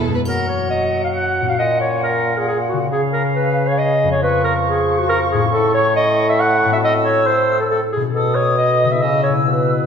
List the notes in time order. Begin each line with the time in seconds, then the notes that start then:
Already playing: E3 B3 E4 G#4 A4
0.05 F#2 G#4
0.12 A#3 B4
0.17 C#4
0.21 C#5
0.25 F#3 A#4 F#5, triangle
0.48 C#5
0.70 D#5
1.04 F5
1.14 F#5
1.41 A#2
1.46 C#4 F5
1.50 F#4
1.55 C#5
1.59 A#2 D#5
1.81 C#5
2.03 A#4
2.37 G#4
2.48 G#4
2.69 C#3 F#4
2.77 C#4
2.81 F4
2.86 C#5
2.91 C#3 G#4 F5
3.13 A#4
3.35 B4
3.68 C#5
3.78 D#5
4.04 F2
4.08 C#4 C#5
4.13 G#4
4.17 F3 C#5
4.22 B4 C#6
4.44 A#4
4.66 G#4
4.99 F#4
5.09 A#4
5.32 A2 G#4
5.38 C#4
5.43 E4
5.48 A4
5.52 A2 A4
5.74 C#5
5.96 D#5
6.29 E5
6.40 F#5
6.65 A2
6.70 C4 E5
6.74 F#4
6.79 A4
6.83 D#5 E6
7.04 C#5
7.26 C5
7.60 A4
7.71 A4
7.92 B2 G#4
8.00 C#4
8.05 F#4
8.10 A4
8.14 B2 A4 D#6
8.35 C#5
8.57 D#5
8.84 C#3
8.89 B3 E5
8.93 E4
8.98 G#4
9.02 C#3 D#5 E6
9.23 C#5
9.29 B2
9.34 B3
9.38 E4
9.42 G#4
9.47 B2 B4